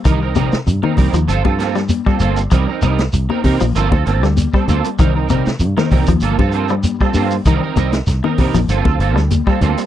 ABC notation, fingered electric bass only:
X:1
M:4/4
L:1/16
Q:1/4=97
K:Cdor
V:1 name="Fingered electric bass" clef=bass
C,,2 B,,, z G,, z C,, E,, G,,, G,,4- G,, G,,,2 | C,, z C,,2 C,, z C, B,,, G,,, D,, G,,, D,,2 z D,, z | C,,2 B,,, z G,, z C,, E,, G,,, G,,4- G,, G,,2 | C,, z C,,2 C,, z C, B,,, G,,, D,, G,,, D,,2 z D,, z |]